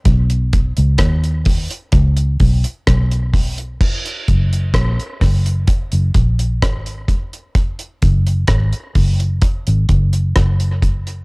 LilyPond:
<<
  \new Staff \with { instrumentName = "Fingered electric bass" } { \clef bass \time 4/4 \key b \lydian \tempo 4 = 64 b,,8. cis,16 dis,8. r16 cis,8 b,,16 r16 b,,4 | r8 fis,,8 ais,,16 r16 fis,,8 r16 fis,,16 ais,,8 gis,,8 r8 | r8 fis,,8 gis,,16 r16 fis,,8 r16 gis,,16 fis,,8 fis,,4 | }
  \new DrumStaff \with { instrumentName = "Drums" } \drummode { \time 4/4 <hh bd>16 hh16 <hh bd>16 hh16 <hh bd ss>16 hh16 <hho bd>16 hh16 <hh bd>16 hh16 <hho bd>16 hh16 <hh bd ss>16 hh16 <hho bd>16 hh16 | <cymc bd>16 hh16 <hh bd>16 hh16 <hh bd ss>16 hh16 <hho bd ss>16 hh16 <hh bd>16 hh16 <hh bd>16 hh16 <hh bd ss>16 hh16 <hh bd>16 hh16 | <hh bd>16 hh16 <hh bd>16 hh16 <hh bd ss>16 hh16 <hho bd>16 hh16 <hh bd>16 hh16 <hh bd>16 hh16 <hh bd ss>16 hh16 <hh bd>16 hh16 | }
>>